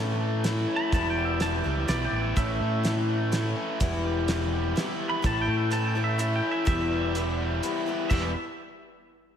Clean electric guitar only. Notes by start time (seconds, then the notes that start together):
Already playing: A4
0.76 B5
0.94 A5
1.10 G5
1.25 E5
1.42 A5
1.58 G5
1.74 E5
1.89 D5
2.05 G5
2.22 E5
2.37 E5
5.09 B5
5.26 A5
5.42 G5
5.57 E5
5.73 A5
5.88 G5
6.04 E5
6.20 E5
6.36 G5
6.51 E5
6.67 E5
8.10 E5